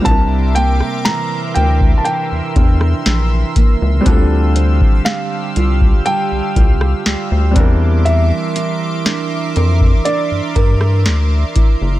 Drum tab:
HH |x-x-x-x-x-x-x-x-|x-x-x-x-x-x-x-x-|x-x-x-x-x-x-x-x-|
SD |---ro------ro---|----o------ro---|----o------ro---|
BD |o------o--o---o-|o--o---o--o---o-|-------o--o---o-|